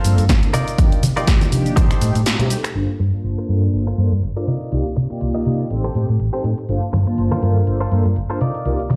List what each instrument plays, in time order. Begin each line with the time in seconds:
Already playing: clean electric guitar F4 A4 A#4 C5
0.04 fingered electric bass G2, analog polysynth F3 A#3 C4 D4 A4, open hi-hat, cabasa, shaker
0.18 fingered electric bass G2, closed hi-hat, cabasa, shaker
0.29 fingered electric bass G1, kick, snare, closed hi-hat, cabasa
0.43 analog polysynth F3 A#3 C4 D4 A4, closed hi-hat
0.53 fingered electric bass C3, clean electric guitar D#4 F4 A#4 D5, open hi-hat, cabasa, shaker
0.68 closed hi-hat, cabasa, shaker
0.78 fingered electric bass C2, analog polysynth F3 A#3 D4 D#4 G4, kick, closed hi-hat, cabasa
0.92 closed hi-hat
1.03 fingered electric bass C3, open hi-hat, high conga, cabasa, shaker
1.16 analog polysynth F3 A#3 D#4 G4 D5, clean electric guitar D#4 F4 A#4 D5, muted fingered electric bass stroke, closed hi-hat, cabasa, shaker
1.27 fingered electric bass C2, kick, snare, closed hi-hat, cabasa, shaker
1.41 muted clean electric guitar stroke, snare, closed hi-hat, high conga, cabasa
1.52 fingered electric bass C3, analog polysynth F3 A#3 D4 D#4 G4, open hi-hat, cabasa, shaker
1.66 closed hi-hat, cabasa, shaker
1.76 fingered electric bass A1, analog polysynth G3 A3 C4 D#4 G4, clean electric guitar D#4 G4 A4 C5, kick, closed hi-hat, cabasa, shaker
1.91 finger snap, closed hi-hat, cabasa
2.01 fingered electric bass A2, analog polysynth G3 A3 C4 D#4 G4, open hi-hat, cabasa, shaker
2.15 fingered electric bass A2, closed hi-hat, cabasa, shaker
2.25 snare, closed hi-hat, cabasa, shaker
2.39 analog polysynth G3 A3 C4 D#4 G4, closed hi-hat, low conga
2.50 open hi-hat, cabasa, shaker
2.64 finger snap, muted clean electric guitar stroke, closed hi-hat, cabasa, shaker
2.74 fingered electric bass G1, analog polysynth A#3 D4 F4 A4 C5, closed hi-hat
2.89 closed hi-hat
2.99 fingered electric bass G2, muted clean electric guitar stroke, open hi-hat, cabasa
3.13 analog polysynth A#3 D4 F4 C5 A5, muted fingered electric bass stroke, muted clean electric guitar stroke, closed hi-hat, cabasa
3.24 fingered electric bass G1, closed hi-hat, cabasa
3.38 clean electric guitar F4 A4 A#4 C5, closed hi-hat
3.48 fingered electric bass G2, analog polysynth A#3 D4 F4 A4 C5, open hi-hat, cabasa
3.63 closed hi-hat, cabasa
3.73 fingered electric bass G1, analog polysynth A#3 D4 F4 A4 C5, closed hi-hat, cabasa
3.87 clean electric guitar F4 A4 A#4 C5, closed hi-hat
3.98 fingered electric bass G2, analog polysynth A#3 D4 F4 A4 C5, open hi-hat, cabasa
4.12 fingered electric bass G2, closed hi-hat, cabasa
4.23 fingered electric bass G1, closed hi-hat, cabasa
4.36 analog polysynth A#3 D4 F4 A4 C5, clean electric guitar F4 A4 A#4 D5, closed hi-hat
4.47 fingered electric bass C3, clean electric guitar D#4 F4 A#4 D5, open hi-hat, cabasa
4.61 closed hi-hat, cabasa
4.71 fingered electric bass C2, analog polysynth A#3 D#4 F4 G4 D5, closed hi-hat, cabasa
4.86 closed hi-hat
4.96 fingered electric bass C3, muted clean electric guitar stroke, open hi-hat, cabasa
5.10 analog polysynth A#3 D#4 F4 G4 D5, muted clean electric guitar stroke, muted fingered electric bass stroke, closed hi-hat, cabasa
5.21 fingered electric bass C2, closed hi-hat, cabasa
5.34 clean electric guitar D#4 F4 A#4 D#5, closed hi-hat
5.45 fingered electric bass C3, analog polysynth A#3 D#4 F4 G4 D5, open hi-hat, cabasa
5.59 closed hi-hat, cabasa
5.70 fingered electric bass A1, analog polysynth C4 D#4 G4 A4 C5, closed hi-hat, cabasa
5.84 clean electric guitar G4 A4 C5, closed hi-hat
5.95 fingered electric bass A2, analog polysynth C4 D#4 G4 A4 C5, open hi-hat, cabasa
6.09 fingered electric bass A2, closed hi-hat, cabasa
6.20 fingered electric bass A1, closed hi-hat, cabasa
6.33 analog polysynth C4 D#4 G4 A4 C5, clean electric guitar G4 A4 C5, closed hi-hat
6.44 fingered electric bass A2, open hi-hat, cabasa
6.58 muted clean electric guitar stroke, closed hi-hat, cabasa
6.68 fingered electric bass G1, analog polysynth A#3 D4 F4 A4 C5, closed hi-hat, cabasa
6.83 closed hi-hat
6.93 fingered electric bass G2, muted clean electric guitar stroke, open hi-hat, high conga, cabasa, shaker
7.07 analog polysynth A#3 D4 F4 C5 A5, muted clean electric guitar stroke, muted fingered electric bass stroke, closed hi-hat, cabasa, shaker
7.17 fingered electric bass G1, closed hi-hat, cabasa, shaker
7.31 clean electric guitar F4 A4 A#4 C5, closed hi-hat, high conga
7.42 fingered electric bass G2, analog polysynth A#3 D4 F4 A4 C5, open hi-hat, cabasa, shaker
7.55 closed hi-hat, cabasa, shaker
7.67 fingered electric bass G1, analog polysynth A#3 D4 F4 A4 C5, closed hi-hat, cabasa, shaker
7.80 clean electric guitar F4 A4 A#4 C5, closed hi-hat
7.91 fingered electric bass G2, analog polysynth A#3 D4 F4 A4 C5, open hi-hat, cabasa, shaker
8.05 fingered electric bass G2, closed hi-hat, cabasa, shaker
8.16 fingered electric bass G1, closed hi-hat, cabasa
8.30 analog polysynth A#3 D4 F4 A4 C5, clean electric guitar F4 A4 A#4 C5, closed hi-hat
8.41 fingered electric bass C3, clean electric guitar D#4 F4 A#4 D5, open hi-hat, cabasa, shaker
8.55 closed hi-hat, cabasa
8.65 fingered electric bass C2, analog polysynth A#3 D#4 F4 G4 D5, closed hi-hat, cabasa, shaker
8.80 closed hi-hat
8.89 fingered electric bass C3, muted clean electric guitar stroke, open hi-hat, high conga, cabasa, shaker